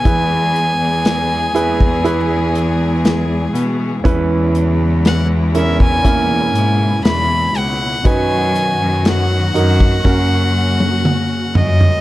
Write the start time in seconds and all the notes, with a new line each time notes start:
Already playing: B3 G#5
0.05 E2 E3 G#3 E4 G#4 B4, kick, closed hi-hat
0.56 closed hi-hat
0.80 E2
1.05 snare, closed hi-hat
1.55 E2 E4 G#4 B4, closed hi-hat
1.80 kick
2.04 E4 G#4 B4, closed hi-hat
2.55 closed hi-hat
3.05 snare, closed hi-hat
3.55 B2, closed hi-hat
4.04 E2 B2 C#3 E3 C#4 E4 B4, kick, closed hi-hat
4.55 closed hi-hat
5.05 F#5, snare, closed hi-hat
5.55 C#4 E4 A#4 E5, closed hi-hat
5.80 G#5, kick
6.04 A#3 C#4 E4, kick, closed hi-hat
6.55 G#2, closed hi-hat
7.05 E2 B5, snare, closed hi-hat
7.55 C#2 F#5, closed hi-hat
8.04 F#2 D#3 F#3 D#4 F#4 B4 G#5, kick, closed hi-hat
8.55 closed hi-hat
8.80 F#2
9.05 F#5, snare, closed hi-hat
9.54 F#2 D#4 F#4 A#4, closed hi-hat
9.80 kick
10.05 F#2 C#3 A#3 C#4 F#4 A#4, kick, snare
10.80 high tom
11.05 mid tom
11.55 F#2 D#5, floor tom
11.81 floor tom